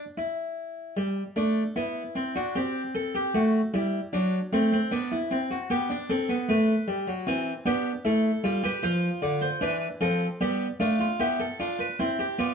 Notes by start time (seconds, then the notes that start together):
0.18 E4
0.97 G3
1.36 A3 D4
1.76 B3 E4
2.16 C4
2.36 D4 F#4
2.56 C4 G4
2.95 A4
3.15 G4
3.35 A3 F#4
3.74 G3 E4
4.13 F#3 D4
4.53 A3 C4
4.72 C4
4.92 B3 D4
5.12 E4
5.31 C4
5.51 F#4
5.70 B3 G4
5.90 D4
6.10 C4 A4
6.29 B3
6.49 A3 B4
6.88 G3
7.08 F#3
7.27 E3 C4
7.66 B3 D4 G4
8.05 A3 E4 A4
8.44 G3 F4
8.64 G4 B4
8.83 F3 F4 C5
9.22 D3 D5
9.42 C5
9.61 E3 D4 B4
10.01 F3 C4 A4
10.41 G3 B3 G4
10.80 A3 D4 F4
11.00 F4
11.20 B3 E4 G4
11.40 A4
11.60 D4 F4
11.79 B4
12.00 C4 E4 C5
12.19 G4
12.39 B3 F4 D5